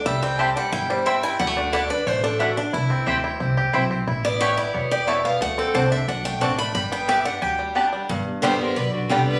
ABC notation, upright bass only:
X:1
M:4/4
L:1/8
Q:1/4=179
K:G
V:1 name="Upright bass" clef=bass
C,,4 G,,,4 | D,,4 A,,,4 | C,,2 D,,2 C,,2 B,,,2 | A,,,4 E,,,4 |
D,,2 C,,2 B,,,2 A,,,2 | G,,,4 D,,4 | G,,,4 B,,,2 C,,2 |]